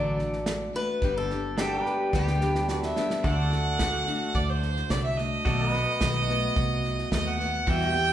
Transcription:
0.00 0.69 A1 medium
0.00 0.18 D3 medium
0.00 0.18 F#3 medium
0.00 0.19 A3 medium
0.00 0.18 D4 medium
0.00 1.00 D4 medium
0.00 0.16 F#4 medium
0.00 1.00 F#4 medium
0.00 1.01 A4 medium
0.00 0.75 D5 loud
0.17 0.75 A3 soft
0.17 0.74 D4 medium
0.17 0.72 F#4 soft
0.17 snare soft
0.33 snare soft
0.46 snare loud
0.46 hi-hat pedal medium
0.73 1.03 A3 soft
0.73 1.02 D4 soft
0.73 1.01 F#4 soft
0.73 1.14 B4 medium
0.73 snare soft
1.02 1.80 G1 medium
1.02 1.30 G2 medium
1.02 1.30 D3 medium
1.02 1.30 G3 medium
1.02 1.30 B3 medium
1.02 1.30 D4 medium
1.02 1.29 G4 medium
1.02 kick loud
1.02 snare soft
1.18 1.56 A4 medium
1.30 1.56 G3 soft
1.30 1.57 B3 soft
1.30 1.58 D4 soft
1.30 1.58 G4 medium
1.30 snare soft
1.57 2.12 G3 medium
1.57 2.13 B3 medium
1.57 3.23 D4 medium
1.57 2.13 D4 medium
1.57 1.79 F#4 medium
1.57 2.14 G4 medium
1.57 2.13 G4 medium
1.57 1.85 A4 medium
1.57 snare loud
1.57 hi-hat pedal medium
1.79 3.23 G4 medium
1.85 3.24 B4 medium
1.85 snare soft
2.13 2.92 D2 medium
2.13 2.41 G2 medium
2.13 2.41 D3 medium
2.13 2.41 G3 medium
2.13 2.41 B3 medium
2.13 2.40 D4 medium
2.13 2.39 G4 medium
2.13 2.68 G4 medium
2.13 kick loud
2.13 snare medium
2.27 snare medium
2.40 2.98 G3 soft
2.40 2.97 B3 soft
2.40 2.96 D4 soft
2.40 2.94 G4 soft
2.40 snare medium
2.55 snare medium
2.68 2.94 F#4 medium
2.68 2.81 D5 medium
2.68 snare medium
2.68 hi-hat pedal medium
2.82 3.21 E5 medium
2.82 snare medium
2.96 3.23 G3 soft
2.96 3.24 B3 medium
2.96 3.24 D4 medium
2.96 3.24 G4 medium
2.96 snare medium
3.10 snare medium
3.23 4.03 D2 medium
3.23 3.52 D3 medium
3.23 3.52 A3 medium
3.23 3.51 D4 medium
3.23 5.44 F#4 medium
3.23 3.49 F#4 medium
3.23 5.44 A4 medium
3.23 5.45 D5 medium
3.23 4.36 F#5 loud
3.23 kick loud
3.23 snare soft
3.50 3.79 A3 soft
3.50 3.79 D4 medium
3.50 3.79 F#4 medium
3.50 snare soft
3.78 4.07 D3 medium
3.78 4.07 A3 medium
3.78 4.06 D4 medium
3.78 4.05 F#4 medium
3.78 kick medium
3.78 snare loud
3.78 hi-hat pedal medium
4.06 4.89 A3 medium
4.06 4.90 D4 medium
4.06 4.90 F#4 medium
4.06 snare soft
4.35 4.82 D2 medium
4.35 4.51 D5 medium
4.35 kick loud
4.35 snare soft
4.49 4.92 C5 medium
4.62 snare soft
4.76 snare soft
4.89 5.37 C2 medium
4.89 5.18 D3 medium
4.89 5.18 A3 medium
4.89 5.18 D4 medium
4.89 5.16 F#4 medium
4.89 5.03 D5 medium
4.89 kick medium
4.89 snare loud
4.89 hi-hat pedal medium
5.04 5.19 E5 medium
5.17 5.45 A3 soft
5.17 5.46 D4 soft
5.17 5.45 F#4 medium
5.17 7.12 D#5 loud
5.17 snare soft
5.45 5.85 B1 medium
5.45 5.73 B2 medium
5.45 5.74 D#3 medium
5.45 5.74 A3 medium
5.45 5.73 B3 medium
5.45 7.65 F#4 medium
5.45 5.72 F#4 medium
5.45 5.71 A4 medium
5.45 5.67 D5 medium
5.45 kick loud
5.45 snare soft
5.67 7.66 D#5 medium
5.71 6.02 B3 medium
5.71 6.01 F#4 soft
5.71 7.66 B4 medium
5.71 snare soft
5.76 6.00 A3 soft
6.01 6.48 B1 medium
6.01 6.29 D#3 medium
6.01 6.29 A3 medium
6.01 6.28 B3 medium
6.01 6.27 F#4 medium
6.01 kick medium
6.01 snare loud
6.01 hi-hat pedal medium
6.28 7.11 A3 medium
6.28 7.12 B3 medium
6.28 7.12 F#4 medium
6.28 snare soft
6.56 7.03 C2 medium
6.56 kick loud
6.56 snare soft
6.84 snare soft
6.98 snare soft
7.11 7.59 D#2 medium
7.11 7.39 D#3 medium
7.11 7.40 A3 medium
7.11 7.39 B3 medium
7.11 7.37 F#4 medium
7.11 7.28 D#5 loud
7.11 kick medium
7.11 snare loud
7.11 hi-hat pedal medium
7.27 7.70 F#5 loud
7.38 7.67 A3 soft
7.38 7.66 B3 medium
7.38 7.67 F#4 medium
7.38 snare soft
7.66 7.95 E2 medium
7.66 8.13 E2 medium
7.66 7.95 B2 medium
7.66 7.95 E3 medium
7.66 7.95 G3 medium
7.66 7.94 B3 medium
7.66 7.88 F#4 medium
7.66 7.93 G4 medium
7.66 8.13 E5 medium
7.66 8.13 G5 loud
7.66 kick loud
7.66 snare soft
7.81 snare soft
7.88 8.13 G4 medium
7.94 8.13 E3 soft
7.94 8.13 G3 soft
7.94 8.13 B3 soft
7.94 8.13 G4 medium
7.94 snare soft

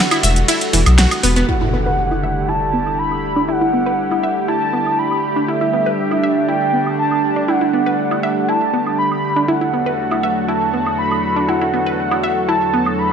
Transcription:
0.00 1.44 D3 medium
0.00 1.44 G3 medium
0.00 1.44 A3 medium
0.00 1.44 F#4 medium
0.00 1.44 A4 medium
0.00 0.99 F#5 loud
0.11 0.16 E4 medium
0.11 0.16 E5 medium
0.11 closed hi-hat soft
0.11 high woodblock medium
0.11 shaker soft
0.23 0.43 E1 loud
0.23 0.28 E5 medium
0.23 0.28 E6 medium
0.23 open hi-hat loud
0.23 shaker medium
0.36 closed hi-hat soft
0.36 shaker soft
0.48 0.53 E4 medium
0.48 0.53 E5 medium
0.48 closed hi-hat loud
0.48 ride medium
0.48 shaker soft
0.61 closed hi-hat soft
0.73 0.84 E1 loud
0.73 0.81 E3 medium
0.73 0.81 E4 medium
0.73 open hi-hat loud
0.73 shaker medium
0.86 1.06 B1 medium
0.86 closed hi-hat soft
0.86 high woodblock medium
0.86 shaker soft
0.98 1.10 F#4 medium
0.98 1.10 F#5 medium
0.98 snare loud
0.98 closed hi-hat loud
0.98 ride medium
0.98 shaker soft
1.11 closed hi-hat soft
1.11 high woodblock medium
1.11 shaker soft
1.23 1.43 E1 medium
1.23 1.28 B3 medium
1.23 1.28 B4 medium
1.23 open hi-hat loud
1.23 shaker medium
1.36 1.47 B3 medium
1.36 1.47 B4 medium
1.36 closed hi-hat soft
1.36 shaker soft
1.48 13.13 D3 medium
1.48 9.44 G3 medium
1.48 13.13 A3 medium
1.48 5.44 E4 medium
1.48 1.53 E4 medium
1.48 9.44 G4 medium
1.48 2.50 F#5 loud
1.48 impact medium
1.48 shaker soft
1.61 1.68 E4 medium
1.73 1.81 B3 medium
1.86 1.91 B4 medium
1.99 shaker soft
2.11 2.16 E4 medium
2.11 high woodblock medium
2.11 shaker soft
2.24 2.28 E5 medium
2.49 2.53 E4 medium
2.49 3.00 A5 loud
2.73 2.81 B3 medium
2.73 shaker medium
2.86 high woodblock medium
2.86 shaker soft
2.99 3.50 B5 loud
3.11 high woodblock medium
3.11 shaker soft
3.24 shaker medium
3.36 3.43 D4 medium
3.48 3.53 E4 medium
3.48 4.48 F#5 loud
3.61 3.68 E4 medium
3.73 3.81 B3 medium
3.73 shaker medium
3.86 3.91 B4 medium
4.11 4.16 E4 medium
4.11 high woodblock medium
4.11 shaker soft
4.23 4.28 E5 medium
4.48 4.53 E4 medium
4.48 5.00 A5 loud
4.73 4.81 B3 medium
4.86 high woodblock medium
4.86 shaker soft
4.99 5.50 B5 loud
5.11 high woodblock medium
5.11 shaker soft
5.24 shaker medium
5.36 5.43 D4 medium
5.48 9.44 D4 medium
5.48 5.53 E4 medium
5.48 6.48 E5 loud
5.61 5.68 E4 medium
5.73 5.81 B3 medium
5.73 shaker medium
5.86 5.91 B4 medium
6.11 6.16 E4 medium
6.11 high woodblock medium
6.11 shaker soft
6.23 6.28 E5 medium
6.48 6.53 E4 medium
6.48 6.95 G5 loud
6.73 6.81 B3 medium
6.73 shaker medium
6.86 high woodblock medium
6.86 shaker soft
6.99 7.50 A5 loud
6.99 shaker soft
7.11 high woodblock medium
7.11 shaker soft
7.24 shaker medium
7.36 7.43 D4 medium
7.48 7.53 E4 medium
7.48 8.50 F#5 loud
7.61 7.68 E4 medium
7.73 7.81 B3 medium
7.73 shaker medium
7.86 7.91 B4 medium
8.11 8.16 E4 medium
8.11 high woodblock medium
8.11 shaker soft
8.23 8.28 E5 medium
8.23 shaker medium
8.37 shaker soft
8.49 8.53 E4 medium
8.49 8.98 A5 loud
8.74 8.81 B3 medium
8.74 shaker medium
8.86 high woodblock medium
8.86 shaker soft
8.98 9.50 B5 loud
8.98 shaker soft
9.11 high woodblock medium
9.11 shaker soft
9.24 shaker medium
9.36 9.43 D4 medium
9.36 shaker soft
9.48 13.13 E2 medium
9.48 13.13 F#3 medium
9.48 9.53 E4 medium
9.48 13.13 F#4 medium
9.48 13.13 A4 medium
9.48 10.50 F#5 loud
9.61 9.68 E4 medium
9.73 9.81 B3 medium
9.73 shaker medium
9.86 9.91 B4 medium
9.99 shaker soft
10.11 10.16 E4 medium
10.11 high woodblock medium
10.11 shaker soft
10.23 10.28 E5 medium
10.37 shaker soft
10.48 10.53 E4 medium
10.48 10.98 A5 loud
10.73 10.81 B3 medium
10.73 shaker medium
10.86 high woodblock medium
10.86 shaker soft
10.98 11.50 B5 loud
10.98 shaker soft
11.11 high woodblock medium
11.11 shaker soft
11.24 shaker medium
11.36 11.43 D4 medium
11.36 shaker soft
11.48 11.53 E4 medium
11.48 12.48 F#5 loud
11.61 11.68 E4 medium
11.74 11.81 B3 medium
11.74 shaker medium
11.86 11.91 B4 medium
11.99 shaker soft
12.11 12.16 E4 medium
12.11 high woodblock medium
12.11 shaker soft
12.23 12.28 E5 medium
12.37 shaker soft
12.48 12.53 E4 medium
12.48 13.00 A5 loud
12.74 12.81 B3 medium
12.74 shaker medium
12.86 high woodblock medium
12.86 shaker soft
12.98 13.13 B5 loud
12.98 shaker soft

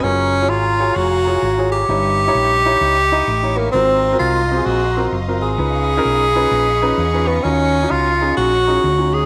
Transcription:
0.03 0.50 F#1 loud
0.03 0.51 C#4 medium
0.03 0.35 F4 medium
0.03 0.35 F#4 medium
0.03 0.35 G#4 medium
0.03 0.35 A#4 medium
0.03 1.87 C#5 medium
0.03 1.87 F5 medium
0.03 1.87 G#5 medium
0.03 1.87 A#5 medium
0.42 0.67 F4 medium
0.42 0.67 F#4 medium
0.42 0.67 G#4 medium
0.42 0.67 C#5 medium
0.49 0.89 G#1 medium
0.49 0.97 F4 loud
0.80 1.08 F4 medium
0.80 1.09 F#4 medium
0.80 1.09 G#4 medium
0.80 1.09 C#5 medium
0.96 1.35 F1 medium
0.96 1.71 F#4 loud
1.27 1.44 F4 medium
1.27 1.44 F#4 medium
1.27 1.44 G#4 medium
1.27 1.45 C#5 medium
1.42 1.82 G#1 medium
1.58 1.82 F4 medium
1.58 1.82 F#4 medium
1.58 1.82 G#4 medium
1.58 1.82 C#5 medium
1.72 3.59 G4 loud
1.88 2.28 G1 loud
1.88 2.62 G2 medium
1.88 2.20 D#4 medium
1.88 2.20 E4 medium
1.88 2.20 G4 medium
1.88 2.21 C#5 medium
1.88 3.73 D#5 medium
1.88 3.72 E5 medium
1.88 3.72 G5 medium
1.88 3.73 C#6 medium
2.28 2.52 D#4 medium
2.28 2.52 E4 medium
2.28 2.52 G4 medium
2.28 2.52 C#5 loud
2.35 2.74 A#1 medium
2.66 2.94 D#4 medium
2.66 2.94 E4 medium
2.66 2.94 G4 medium
2.66 2.94 C#5 medium
2.81 3.21 C#2 medium
3.12 3.29 D#4 medium
3.12 3.29 E4 medium
3.12 3.30 G4 medium
3.12 3.30 D#5 medium
3.28 3.67 A1 medium
3.43 3.67 D#4 medium
3.43 3.67 E4 medium
3.43 3.67 G4 medium
3.43 3.67 C#5 medium
3.58 3.72 A#3 medium
3.72 4.13 G#1 loud
3.72 4.47 G#2 medium
3.72 4.16 C4 medium
3.72 4.05 C4 medium
3.72 4.05 F4 medium
3.72 4.05 F#4 medium
3.72 4.06 A#4 medium
3.72 5.57 D#5 medium
3.72 9.26 F5 medium
3.72 5.57 A#5 medium
3.72 5.57 C6 medium
4.12 4.37 C4 medium
4.12 4.37 F4 medium
4.12 4.37 F#4 medium
4.12 4.37 A#4 medium
4.19 4.60 C2 medium
4.19 4.67 F4 medium
4.51 4.79 C4 medium
4.51 4.79 F4 medium
4.51 4.79 F#4 medium
4.51 4.55 G4 medium
4.57 4.82 G#4 medium
4.66 5.06 A#1 medium
4.66 5.10 F#4 medium
4.96 5.14 C4 medium
4.96 5.15 F4 medium
4.96 5.15 F#4 medium
4.96 5.15 A#4 medium
5.12 5.43 F#1 medium
5.28 5.52 C4 medium
5.28 5.52 F4 medium
5.28 5.52 F#4 medium
5.28 5.52 A#4 medium
5.42 5.57 G#1 medium
5.42 7.29 G#4 loud
5.58 5.98 C#2 loud
5.58 6.32 C#3 medium
5.58 5.90 C#4 medium
5.58 5.90 D#4 medium
5.58 5.91 F4 medium
5.58 5.91 B4 medium
5.58 9.26 D#5 medium
5.58 7.43 B5 medium
5.58 9.26 C#6 medium
5.97 6.22 C#4 medium
5.97 6.22 D#4 medium
5.97 6.23 F4 medium
5.97 6.23 A#4 loud
6.05 6.45 B1 medium
6.35 6.64 C#4 medium
6.35 6.64 D#4 medium
6.35 6.64 F4 medium
6.35 6.64 B4 medium
6.51 6.91 A#1 medium
6.82 7.00 C#4 medium
6.82 7.00 D#4 medium
6.82 7.00 F4 medium
6.82 7.00 B4 loud
6.98 7.37 E2 medium
7.14 7.38 C#4 medium
7.14 7.38 D#4 medium
7.14 7.38 F4 medium
7.14 7.38 B4 medium
7.28 7.45 B3 medium
7.44 7.84 D#2 loud
7.44 8.18 D#3 medium
7.44 7.92 C#4 medium
7.44 7.76 C#4 medium
7.44 7.76 D#4 medium
7.44 7.76 F4 medium
7.44 7.76 F#4 medium
7.44 9.26 C#5 medium
7.83 8.08 C#4 medium
7.83 8.08 D#4 medium
7.83 8.08 F4 medium
7.83 8.08 F#4 medium
7.91 8.31 C#2 medium
7.91 8.36 F4 loud
8.21 8.50 C#4 medium
8.21 8.50 D#4 medium
8.21 8.50 F4 medium
8.21 8.50 G#4 medium
8.37 8.77 A#1 medium
8.37 9.15 F#4 loud
8.67 8.85 C#4 medium
8.67 8.85 D#4 medium
8.67 8.86 F4 medium
8.67 8.86 G#4 medium
8.84 9.23 D2 medium
8.98 9.23 C#4 medium
8.98 9.23 D#4 medium
8.98 9.23 F4 medium
8.98 9.23 F#4 medium
9.14 9.26 G#4 medium

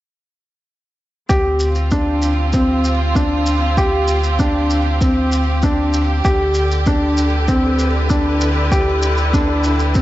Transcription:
1.29 6.21 D2 medium
1.29 6.25 C4 medium
1.29 1.67 G4 medium
1.29 kick medium
1.29 shaker soft
1.60 shaker medium
1.67 6.25 F4 medium
1.75 shaker soft
1.91 2.29 D4 medium
1.91 10.02 G4 medium
1.91 kick medium
1.91 shaker soft
2.22 shaker medium
2.53 2.91 C4 medium
2.53 kick medium
2.53 shaker soft
2.84 shaker medium
3.15 3.53 D4 medium
3.15 kick medium
3.15 shaker soft
3.46 shaker medium
3.77 4.15 G4 medium
3.77 kick medium
3.77 shaker medium
4.08 shaker medium
4.24 shaker soft
4.39 4.77 D4 medium
4.39 kick medium
4.39 shaker soft
4.70 shaker medium
5.01 5.39 C4 medium
5.01 kick medium
5.01 shaker soft
5.32 shaker medium
5.62 6.01 D4 medium
5.62 kick medium
5.62 shaker soft
5.93 shaker medium
6.25 10.02 D2 medium
6.25 10.02 D3 medium
6.25 6.62 G4 medium
6.25 kick loud
6.25 shaker soft
6.54 shaker medium
6.71 shaker soft
6.86 7.25 D4 medium
6.86 kick medium
6.86 shaker medium
7.09 10.02 B4 medium
7.17 shaker medium
7.48 7.86 C4 medium
7.48 kick medium
7.48 shaker medium
7.79 10.02 E4 medium
7.79 shaker medium
8.10 8.47 D4 medium
8.10 kick medium
8.10 shaker medium
8.41 shaker medium
8.72 9.09 G4 medium
8.72 kick medium
8.72 shaker medium
9.02 shaker medium
9.17 shaker soft
9.33 9.72 D4 medium
9.33 kick medium
9.33 shaker soft
9.64 shaker medium
9.79 shaker soft
9.95 10.02 C4 medium
9.95 kick medium
9.95 shaker soft

